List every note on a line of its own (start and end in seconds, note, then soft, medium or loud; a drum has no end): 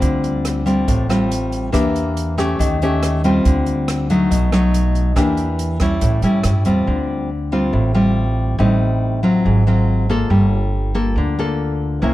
0.00 0.84 D2 medium
0.00 0.85 D3 medium
0.00 0.63 G3 medium
0.00 0.63 C4 medium
0.00 0.63 F4 medium
0.00 kick medium
0.00 closed hi-hat soft
0.24 closed hi-hat soft
0.45 cross-stick medium
0.45 closed hi-hat soft
0.66 1.06 G3 medium
0.66 1.06 C4 medium
0.66 1.06 F4 medium
0.66 closed hi-hat soft
0.88 1.70 A1 medium
0.88 1.71 A2 medium
0.88 kick medium
0.88 closed hi-hat soft
1.09 1.70 G3 medium
1.09 1.71 C4 medium
1.09 1.71 F4 medium
1.09 cross-stick medium
1.09 closed hi-hat soft
1.31 closed hi-hat soft
1.52 closed hi-hat soft
1.72 2.56 E2 medium
1.72 2.57 E3 medium
1.72 2.34 A#3 soft
1.72 2.34 D4 medium
1.72 2.34 G4 medium
1.72 kick medium
1.72 cross-stick medium
1.72 closed hi-hat soft
1.96 closed hi-hat soft
2.17 closed hi-hat soft
2.38 2.77 A3 medium
2.38 2.77 C#4 medium
2.38 2.78 G4 medium
2.38 cross-stick medium
2.38 closed hi-hat soft
2.59 3.41 D#2 medium
2.59 3.43 D#3 medium
2.59 kick medium
2.59 closed hi-hat soft
2.82 3.21 A3 medium
2.82 3.21 C#4 medium
2.82 3.21 G4 medium
2.82 closed hi-hat soft
3.03 cross-stick medium
3.03 closed hi-hat soft
3.24 4.06 G3 medium
3.24 4.06 C4 medium
3.24 4.07 F4 medium
3.24 closed hi-hat soft
3.45 4.27 D2 medium
3.45 4.29 D3 medium
3.45 kick medium
3.45 closed hi-hat soft
3.66 closed hi-hat soft
3.88 cross-stick medium
3.88 closed hi-hat soft
4.10 4.49 F#3 medium
4.10 4.49 A3 medium
4.10 4.50 D#4 medium
4.10 closed hi-hat soft
4.31 5.12 B1 medium
4.31 5.14 B2 medium
4.31 kick medium
4.31 closed hi-hat soft
4.52 5.13 F#3 medium
4.52 5.13 A3 medium
4.52 5.13 D#4 medium
4.52 cross-stick medium
4.52 closed hi-hat soft
4.74 closed hi-hat soft
4.95 closed hi-hat soft
5.16 5.98 E2 medium
5.16 5.81 E3 medium
5.16 5.77 A#3 medium
5.16 5.77 D4 medium
5.16 5.78 G4 soft
5.16 kick soft
5.16 cross-stick medium
5.16 closed hi-hat soft
5.37 closed hi-hat soft
5.59 closed hi-hat soft
5.80 6.20 G3 medium
5.80 6.20 C#4 medium
5.80 6.21 E4 medium
5.80 kick soft
5.80 cross-stick medium
5.80 closed hi-hat soft
6.01 6.22 A1 medium
6.01 6.85 A2 medium
6.01 kick medium
6.01 closed hi-hat soft
6.22 6.42 A2 medium
6.22 6.63 G3 medium
6.22 6.63 C#4 medium
6.22 6.63 E4 medium
6.22 closed hi-hat soft
6.44 6.64 G2 medium
6.44 cross-stick medium
6.44 closed hi-hat soft
6.65 6.85 E2 medium
6.65 7.29 G3 medium
6.65 7.29 C4 medium
6.65 7.29 F4 medium
6.65 closed hi-hat soft
6.87 7.69 D2 medium
6.87 7.71 D3 medium
7.52 7.92 G3 medium
7.52 7.92 C4 medium
7.52 7.92 F4 medium
7.73 8.55 A1 medium
7.73 8.57 A2 medium
7.94 8.56 G3 medium
7.94 8.56 C4 medium
7.94 8.56 F4 medium
8.58 9.41 A1 loud
8.58 9.43 A2 medium
8.58 9.20 G3 medium
8.58 9.20 C4 medium
8.58 9.20 D#4 medium
9.23 9.63 F#3 medium
9.23 9.63 C4 medium
9.23 9.63 F4 medium
9.45 10.27 G#1 medium
9.45 10.29 G#2 medium
9.67 10.06 F#3 medium
9.67 10.06 C4 medium
9.67 10.07 F4 medium
10.09 10.92 A#3 medium
10.09 10.92 F4 medium
10.09 10.92 A4 medium
10.30 11.12 G1 medium
10.30 11.14 G3 medium
10.95 11.34 A#3 medium
10.95 11.34 F4 medium
10.95 11.34 A4 medium
11.16 11.98 D2 medium
11.16 12.00 D3 medium
11.39 11.99 A#3 medium
11.39 11.99 F4 medium
11.39 11.99 A4 medium
12.02 12.14 C2 medium
12.02 12.14 C3 medium
12.02 12.14 A#3 soft
12.02 12.14 C#4 medium
12.02 12.14 E4 medium